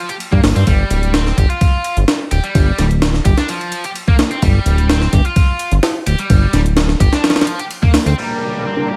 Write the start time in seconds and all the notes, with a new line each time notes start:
0.09 G4, closed hi-hat, ride
0.20 closed hi-hat, ride
0.32 G2 A#3, kick
0.44 G1, snare, closed hi-hat, open hi-hat
0.56 G2 C4, closed hi-hat, ride
0.67 G1 G3, kick, closed hi-hat, ride
0.90 D1, closed hi-hat, ride
1.03 closed hi-hat
1.14 C4, snare, closed hi-hat, ride
1.26 snare
1.38 G1 G4, kick, closed hi-hat, ride
1.50 F4, closed hi-hat
1.61 kick, closed hi-hat, ride
1.84 closed hi-hat, ride
1.97 G1, closed hi-hat
2.08 snare, closed hi-hat, ride
2.31 D1 G4, closed hi-hat, ride
2.44 G3, closed hi-hat
2.55 G1, kick, closed hi-hat, ride
2.78 D1 G3, snare, closed hi-hat, ride
2.91 closed hi-hat
3.02 snare, closed hi-hat, ride
3.14 snare
3.25 G1 G4, kick, closed hi-hat, ride
3.37 D4, snare, closed hi-hat
3.48 F3, closed hi-hat, ride
3.61 ride
3.72 closed hi-hat, ride
3.84 G4, closed hi-hat, ride
3.95 closed hi-hat, ride
4.08 A#3, kick
4.19 snare, closed hi-hat, ride
4.31 C4, closed hi-hat
4.42 G1 G3, kick, closed hi-hat, ride
4.66 D1, closed hi-hat, ride
4.78 closed hi-hat
4.89 C4, snare, closed hi-hat, ride
5.02 snare
5.13 G1 G4, kick, closed hi-hat, ride
5.25 F4, closed hi-hat
5.36 kick, closed hi-hat, ride
5.59 closed hi-hat, ride
5.71 G1, closed hi-hat
5.83 snare, closed hi-hat, ride
6.07 D1 G4, closed hi-hat, ride
6.19 G3, closed hi-hat
6.30 G1, kick, closed hi-hat, ride
6.53 D1 G3, snare, closed hi-hat, ride
6.66 closed hi-hat
6.77 snare, closed hi-hat, ride
6.89 snare
7.00 G1 G4, kick, closed hi-hat, ride
7.13 D4, snare, closed hi-hat
7.24 F3, snare, closed hi-hat, ride
7.30 snare, ride
7.36 snare, ride
7.41 snare, ride
7.47 closed hi-hat, ride
7.59 G4, closed hi-hat, ride
7.71 closed hi-hat, ride
7.83 A#3, kick
7.94 snare, closed hi-hat, open hi-hat
8.06 D2 C4, closed hi-hat, ride
8.18 G3 A#3 D4 A#4, closed hi-hat, downlifter
8.41 closed hi-hat
8.53 closed hi-hat
8.65 C4, closed hi-hat
8.77 snare
8.88 G4, closed hi-hat